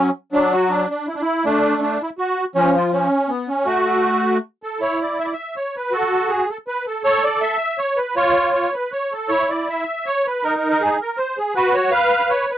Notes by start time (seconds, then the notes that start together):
Already playing: F#3
0.32 F#3 D4
0.53 F#4
0.70 D4
0.90 D4
1.08 E4
1.15 D4
1.22 E4
1.45 A3 D4
1.82 D4
2.02 E4
2.18 F#4
2.55 F3 C#4
2.75 F4
2.92 C#4
3.29 B3
3.49 C#4
3.65 A3 F#4
4.63 A4
4.80 E4 C#5
5.02 D5
5.20 E5
5.25 D5
5.33 E5
5.56 C#5
5.77 B4
5.91 F#4 A4
6.29 G#4
6.50 A4
6.68 B4
6.87 A4
7.04 A4 C#5
7.24 D5
7.41 E5
7.78 C#5
7.96 B4
8.16 F4 C#5
8.53 C#5
8.74 B4
8.92 C#5
9.12 A4
9.29 E4 C#5
9.49 D5
9.70 E5
10.06 C#5
10.27 B4
10.44 D#4 A#4
10.57 A#4
10.70 A#4
10.81 G#4
11.01 A#4
11.17 C5
11.38 G#4
11.55 F#4 B4
11.74 C#5
11.91 B4 F5
12.30 C#5
12.50 B4